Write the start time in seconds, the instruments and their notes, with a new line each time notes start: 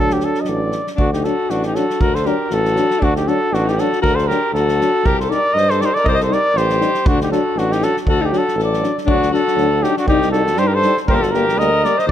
Already playing: tuba D2, euphonium F#3 D4, flugelhorn A4
0.10 flugelhorn G4, snare
0.20 snare
0.24 flugelhorn A4
0.35 snare
0.41 flugelhorn D#5
0.45 tuba A1, flugelhorn D5, snare
0.72 snare
0.87 snare
0.96 tuba D2, alto saxophone D4, flugelhorn F#4, kick
1.13 alto saxophone D#4, flugelhorn G4, snare
1.24 euphonium F#3 D4, alto saxophone F#4, flugelhorn A4, snare
1.49 tuba A1, alto saxophone D4, flugelhorn F#4, snare
1.63 flugelhorn G4, snare
1.67 alto saxophone D#4
1.74 euphonium F#3 D4, alto saxophone F#4, flugelhorn A4, snare
1.90 snare
2.00 tuba D2, alto saxophone F#4, flugelhorn A#4, kick
2.15 alto saxophone A4, flugelhorn C5, snare
2.24 euphonium F#3 D4, alto saxophone G4, flugelhorn A#4, snare
2.50 tuba A1, alto saxophone F#4, flugelhorn A4, snare
2.65 snare
2.75 euphonium F#3 D4, snare
2.91 snare
3.00 tuba D2, alto saxophone D4, flugelhorn F#4, kick
3.16 alto saxophone D#4, flugelhorn G4, snare
3.25 euphonium F#3 D4, alto saxophone F#4, flugelhorn A4, snare
3.52 tuba A1, alto saxophone D4, flugelhorn F#4, snare
3.66 alto saxophone D#4, flugelhorn G4, snare
3.76 euphonium F#3, alto saxophone F#4, snare
3.80 euphonium D4, flugelhorn A4
3.93 snare
4.02 tuba D2, alto saxophone F#4, flugelhorn A#4, kick
4.15 alto saxophone A4, flugelhorn C5, snare
4.27 euphonium F#3 D4, alto saxophone G4, flugelhorn A#4, snare
4.53 tuba D2, alto saxophone F#4, flugelhorn A4, snare
4.68 snare
4.80 euphonium F#3 D4, snare
5.04 tuba C2, alto saxophone G4, flugelhorn A#4, kick
5.20 alto saxophone A4, flugelhorn C5, snare
5.29 euphonium G3 D#4, flugelhorn D5, snare
5.34 alto saxophone A#4
5.54 tuba G2, flugelhorn D#5, snare
5.58 alto saxophone C5
5.70 alto saxophone A4, flugelhorn C5, snare
5.79 euphonium G3 D#4, flugelhorn D5, snare
5.85 alto saxophone A#4, flugelhorn C5
5.92 alto saxophone A4, flugelhorn D5, snare
5.99 alto saxophone A#4
6.04 tuba C2, alto saxophone C5, flugelhorn D5 D#5, kick
6.10 alto saxophone A#4 C5
6.14 flugelhorn D#5
6.20 alto saxophone A4, flugelhorn C5, snare
6.29 euphonium G3 D#4, alto saxophone A#4, snare
6.33 flugelhorn D5
6.55 tuba A1, alto saxophone G4, flugelhorn C5, snare
6.70 snare
6.79 euphonium G3 D#4, snare
6.95 snare
7.06 tuba D2, alto saxophone D4, flugelhorn F#4, kick
7.21 alto saxophone D#4, flugelhorn G4, snare
7.29 euphonium F#3 D4, flugelhorn A4, snare
7.33 alto saxophone F#4
7.55 tuba A1, alto saxophone D4, flugelhorn F#4, snare
7.72 alto saxophone D#4, flugelhorn G4, snare
7.81 euphonium F#3 D4, alto saxophone F#4, flugelhorn A4, snare
7.97 snare
8.06 tuba D2, alto saxophone F#4, flugelhorn A4, kick
8.21 alto saxophone D#4, flugelhorn G4
8.31 euphonium F#3 D4, alto saxophone F#4, snare
8.38 flugelhorn A4
8.48 snare
8.55 tuba A1, alto saxophone A4
8.60 flugelhorn D5, snare
8.74 snare
8.81 euphonium F#3 D4, snare
8.98 snare
9.06 tuba D2, euphonium F#3 D4, alto saxophone D4, flugelhorn F#4, kick
9.22 snare
9.30 euphonium F#3 D4, alto saxophone F#4
9.34 flugelhorn A4, snare
9.47 snare
9.54 tuba D2, euphonium F#3, snare
9.59 euphonium D4
9.81 euphonium F#3 D4, alto saxophone D#4, flugelhorn G4, snare
9.97 alto saxophone D4, flugelhorn F#4, snare
10.05 tuba C2, euphonium G3, alto saxophone D#4, flugelhorn G4, kick
10.10 euphonium D#4
10.22 snare
10.32 euphonium G3 D#4, alto saxophone F#4, flugelhorn A4, snare
10.47 snare
10.56 tuba G2, euphonium G3, alto saxophone G4, flugelhorn C5, snare
10.61 euphonium D#4
10.67 alto saxophone G4, flugelhorn A#4
10.74 alto saxophone A4, flugelhorn C5
10.82 euphonium G3 D#4, snare
10.97 snare
11.06 tuba G1, euphonium G3 A#3, alto saxophone G4, flugelhorn A#4, kick
11.10 alto saxophone A4, flugelhorn A#4 C5
11.16 alto saxophone G4
11.21 alto saxophone F#4, flugelhorn A4, snare
11.32 euphonium G3 A#3, alto saxophone G4, flugelhorn A#4, snare
11.49 snare
11.56 tuba D2, euphonium G3 A#3, alto saxophone A#4, flugelhorn D#5, snare
11.83 euphonium G3 A#3, alto saxophone A#4, flugelhorn D5, snare
11.97 alto saxophone C5, flugelhorn D#5, snare
12.07 tuba D#2, flugelhorn D5